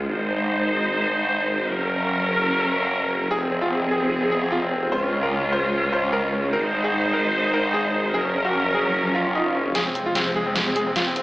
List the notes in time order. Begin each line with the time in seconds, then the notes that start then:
Already playing: G#3
0.09 G#1 D#4 C5
1.70 F#1 F#3 C#4 A#4
3.31 F1 F3 C4 G#4
3.41 C4
3.51 C4
3.62 F4
3.71 C4
3.82 C4
3.91 G#4
4.02 C4
4.22 C4
4.31 G#4
4.42 C4
4.52 F4
4.62 C4
4.72 C4
4.82 C4
4.92 C#2 C#3 G#3 F4 C5
5.03 C#4
5.12 C#4
5.23 A#4
5.32 C#4
5.43 C#4
5.52 C5
5.63 C#4
5.83 C#4
5.93 C5
6.03 C#4
6.13 A#4
6.23 C#4
6.33 C#4
6.44 C#4
6.53 G#1 D#4 A#4 C5
6.64 D#4
6.73 D#4
6.84 G#4
6.93 D#4
7.04 D#4
7.13 A#4
7.24 D#4
7.44 D#4
7.54 A#4
7.64 D#4
7.74 G#4
7.84 D#4
7.94 D#4
8.04 D#4
8.14 F#1 F#3 C#4 G#4 A#4
8.25 C#4
8.34 C#4
8.45 F#4
8.54 C#4
8.65 C#4
8.74 G#4
8.85 C#4
8.94 swell
9.05 C#4
9.14 F4
9.25 C#4
9.35 D#4
9.45 C#4
9.55 C#4
9.66 C#4
9.75 F2 C3 G#3 G#4, snare, closed hi-hat, riser
9.86 C4
9.95 C4, closed hi-hat
10.06 F4
10.15 C4, snare, closed hi-hat
10.26 C4
10.35 G#4
10.46 C4
10.56 snare, closed hi-hat
10.66 C4
10.76 G#4, closed hi-hat
10.86 C4
10.96 F4, snare, closed hi-hat
11.07 C4
11.16 C4, closed hi-hat